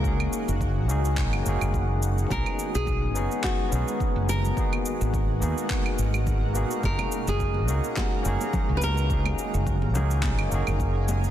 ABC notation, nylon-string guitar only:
X:1
M:4/4
L:1/16
Q:"Swing 16ths" 1/4=106
K:F#
V:1 name="Nylon-string guitar"
A8- A2 z6 | A3 G4- G F4 z2 A2- | A8- A2 z6 | A3 G4- G F4 z3/2 B/2 A2- |
A8- A2 z6 |]